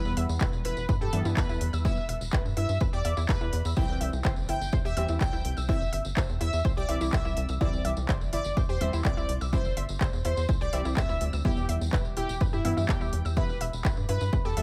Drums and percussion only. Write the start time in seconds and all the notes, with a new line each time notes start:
0.05 tambourine
0.17 open hi-hat
0.29 tambourine
0.40 kick, clap, tambourine
0.53 tambourine
0.65 open hi-hat
0.77 tambourine
0.89 kick, tambourine
1.01 tambourine
1.13 open hi-hat
1.25 tambourine
1.37 kick, clap, tambourine
1.49 tambourine
1.61 open hi-hat
1.74 tambourine
1.85 kick, tambourine
1.97 tambourine
2.09 open hi-hat
2.21 tambourine
2.31 kick, clap, tambourine
2.46 tambourine
2.57 open hi-hat
2.69 tambourine
2.80 kick, tambourine
2.93 tambourine
3.05 open hi-hat
3.17 tambourine
3.29 kick, clap, tambourine
3.41 tambourine
3.53 open hi-hat
3.65 tambourine
3.77 kick, tambourine
3.88 tambourine
4.01 open hi-hat
4.13 tambourine
4.24 kick, clap, tambourine
4.36 tambourine
4.49 open hi-hat
4.62 tambourine
4.72 kick, tambourine
4.85 tambourine
4.97 open hi-hat
5.08 tambourine
5.20 kick, clap, tambourine
5.33 tambourine
5.45 open hi-hat
5.58 tambourine
5.69 kick, tambourine
5.81 tambourine
5.93 open hi-hat
6.05 tambourine
6.17 kick, clap, tambourine
6.30 tambourine
6.41 open hi-hat
6.53 tambourine
6.65 kick, tambourine
6.78 tambourine
6.89 open hi-hat
7.01 tambourine
7.12 kick, clap, tambourine
7.25 tambourine
7.37 open hi-hat
7.49 tambourine
7.61 kick, tambourine
7.73 tambourine
7.85 open hi-hat
7.97 tambourine
8.09 kick, clap, tambourine
8.21 tambourine
8.33 open hi-hat
8.44 tambourine
8.57 kick, tambourine
8.69 tambourine
8.81 open hi-hat
8.93 tambourine
9.05 kick, clap, tambourine
9.18 tambourine
9.29 open hi-hat
9.41 tambourine
9.53 kick, tambourine
9.65 tambourine
9.77 open hi-hat
9.89 tambourine
10.01 kick, clap, tambourine
10.13 tambourine
10.25 open hi-hat
10.37 tambourine
10.49 kick, tambourine
10.61 tambourine
10.73 open hi-hat
10.85 tambourine
10.97 kick, clap, tambourine
11.09 tambourine
11.21 open hi-hat
11.33 tambourine
11.45 kick, tambourine
11.57 tambourine
11.69 open hi-hat
11.81 tambourine
11.93 kick, clap
12.05 tambourine
12.17 open hi-hat
12.29 tambourine
12.41 kick, tambourine
12.53 tambourine
12.65 open hi-hat
12.78 tambourine
12.89 kick, clap, tambourine
13.01 tambourine
13.13 open hi-hat
13.26 tambourine
13.37 kick, tambourine
13.49 tambourine
13.61 open hi-hat
13.73 tambourine
13.85 kick, clap, tambourine
13.97 tambourine
14.09 open hi-hat
14.21 tambourine
14.33 kick, tambourine
14.45 tambourine
14.57 open hi-hat